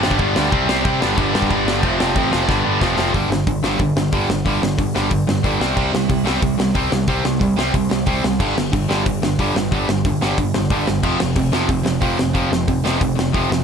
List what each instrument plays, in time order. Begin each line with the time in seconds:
Already playing: distorted electric guitar G2 D3 G3 B3 D4
0.03 picked electric bass G1, distorted electric guitar G2 D3 G3, snare
0.11 kick
0.19 picked electric bass G1, distorted electric guitar G2 D3 G3, kick, crash
0.36 picked electric bass D2, distorted electric guitar G2 D3 G3, snare
0.51 picked electric bass C2, distorted electric guitar C3 G3 C4 E4, kick, crash
0.68 picked electric bass C2, distorted electric guitar C3 G3 C4, snare
0.84 picked electric bass C2, distorted electric guitar C3 G3 C4, kick, crash
1.01 picked electric bass G1, distorted electric guitar G2 D3 G3 B3 D4, snare
1.17 picked electric bass G1, distorted electric guitar G2 D3 G3, kick, crash
1.32 distorted electric guitar G2 D3 G3, picked electric bass G2, snare
1.42 kick
1.50 picked electric bass G1, distorted electric guitar G2 D3 G3, kick, crash
1.66 distorted electric guitar G2 D3 G3, snare
1.83 picked electric bass F1, distorted electric guitar F2 C3 F3 A3 C4, kick, crash
1.99 picked electric bass F1, distorted electric guitar F2 C3 F3, snare
2.15 picked electric bass A1, distorted electric guitar F2 C3 F3, kick, crash
2.31 picked electric bass F1, distorted electric guitar F2 C3 F3, snare
2.48 picked electric bass G1, distorted electric guitar G2 D3 G3 B3 D4, kick, snare
2.64 picked electric bass G1, distorted electric guitar G2 D3 G3
2.81 picked electric bass F1, distorted electric guitar F2 C3 F3 A3 C4, kick, snare
2.97 picked electric bass F1, distorted electric guitar F2 C3 F3, snare
3.14 picked electric bass G1, distorted electric guitar G2 D3 G3, kick, open hi-hat
3.29 picked electric bass G1, distorted electric guitar G2 D3, snare
3.47 picked electric bass G1, distorted electric guitar G2 D3, kick, open hi-hat
3.63 picked electric bass G1, distorted electric guitar G2 D3 G3, snare
3.79 picked electric bass G1, distorted electric guitar G2 D3, kick, open hi-hat
3.96 picked electric bass G1, distorted electric guitar G2 D3, snare
4.12 picked electric bass G1, distorted electric guitar G2 D3 G3, kick, open hi-hat
4.29 picked electric bass G1, distorted electric guitar G2 D3, snare
4.45 picked electric bass G1, distorted electric guitar G2 D3 G3, kick, open hi-hat
4.62 picked electric bass G1, distorted electric guitar G2 D3, snare
4.78 picked electric bass G1, distorted electric guitar G2 D3, kick, open hi-hat
4.95 picked electric bass G1, distorted electric guitar G2 D3 G3, snare
5.11 picked electric bass G1, distorted electric guitar G2 D3, kick, open hi-hat
5.27 picked electric bass G1, distorted electric guitar G2 D3, snare
5.43 picked electric bass G1, distorted electric guitar G2 D3 G3, kick, open hi-hat
5.60 picked electric bass C2, distorted electric guitar C3 G3 C4, snare
5.76 picked electric bass C2, distorted electric guitar C3 G3 C4, kick, crash
5.93 picked electric bass C2, distorted electric guitar C3 G3, snare
6.09 picked electric bass C2, distorted electric guitar C3 G3, kick, open hi-hat
6.24 picked electric bass C2, distorted electric guitar C3 G3 C4, snare
6.41 picked electric bass C2, distorted electric guitar C3 G3, kick, open hi-hat
6.58 picked electric bass C2, distorted electric guitar C3 G3, snare
6.74 picked electric bass C2, distorted electric guitar C3 G3 C4, kick, open hi-hat
6.92 picked electric bass C2, distorted electric guitar C3 G3, snare
7.08 picked electric bass C2, distorted electric guitar C3 G3 C4, kick, open hi-hat
7.25 picked electric bass C2, distorted electric guitar C3 G3, snare
7.41 picked electric bass C2, distorted electric guitar C3 G3, kick, open hi-hat
7.58 picked electric bass C2, distorted electric guitar C3 G3 C4, snare
7.74 picked electric bass C2, distorted electric guitar C3 G3, kick, open hi-hat
7.91 picked electric bass C2, distorted electric guitar C3 G3, snare
8.06 picked electric bass C2, distorted electric guitar C3 G3 C4, kick, open hi-hat
8.24 picked electric bass C2, distorted electric guitar C3 G3, snare
8.40 picked electric bass G1, distorted electric guitar G2 D3 G3, kick, crash
8.56 picked electric bass G1, distorted electric guitar G2 D3, snare
8.73 picked electric bass G1, distorted electric guitar G2 D3, kick, open hi-hat
8.88 picked electric bass G1, distorted electric guitar G2 D3 G3, snare
9.06 picked electric bass G1, distorted electric guitar G2 D3, kick, open hi-hat
9.22 picked electric bass G1, distorted electric guitar G2 D3, snare
9.39 picked electric bass G1, distorted electric guitar G2 D3 G3, kick, open hi-hat
9.55 picked electric bass G1, distorted electric guitar G2 D3, snare
9.71 picked electric bass G1, distorted electric guitar G2 D3 G3, kick, open hi-hat
9.88 picked electric bass G1, distorted electric guitar G2 D3, snare
10.05 picked electric bass G1, distorted electric guitar G2 D3, kick, open hi-hat
10.21 picked electric bass G1, distorted electric guitar G2 D3 G3, snare
10.37 picked electric bass G1, distorted electric guitar G2 D3, kick, open hi-hat
10.54 picked electric bass G1, distorted electric guitar G2 D3, snare
10.70 picked electric bass G1, distorted electric guitar G2 D3 G3, kick, open hi-hat
10.87 picked electric bass G1, distorted electric guitar G2 D3, snare
11.03 picked electric bass F1, distorted electric guitar F2 C3 F3, kick, crash
11.19 picked electric bass F1, distorted electric guitar F2 C3, snare
11.35 picked electric bass F1, distorted electric guitar F2 C3, kick, open hi-hat
11.52 picked electric bass F1, distorted electric guitar F2 C3 F3, snare
11.68 picked electric bass F1, distorted electric guitar F2 C3, kick, open hi-hat
11.85 picked electric bass F1, distorted electric guitar F2 C3, snare
12.01 picked electric bass F1, distorted electric guitar F2 C3 F3, kick, open hi-hat
12.19 picked electric bass F1, distorted electric guitar F2 C3, snare
12.34 picked electric bass F1, distorted electric guitar F2 C3 F3, kick, open hi-hat
12.51 picked electric bass F1, distorted electric guitar F2 C3, snare
12.68 picked electric bass F1, distorted electric guitar F2 C3, kick, open hi-hat
12.84 picked electric bass F1, distorted electric guitar F2 C3 F3, snare
13.00 picked electric bass F1, distorted electric guitar F2 C3, kick, open hi-hat
13.15 picked electric bass F1, distorted electric guitar F2 C3, snare
13.32 picked electric bass F1, distorted electric guitar F2 C3 F3, kick, open hi-hat
13.50 picked electric bass F1, distorted electric guitar F2 C3, snare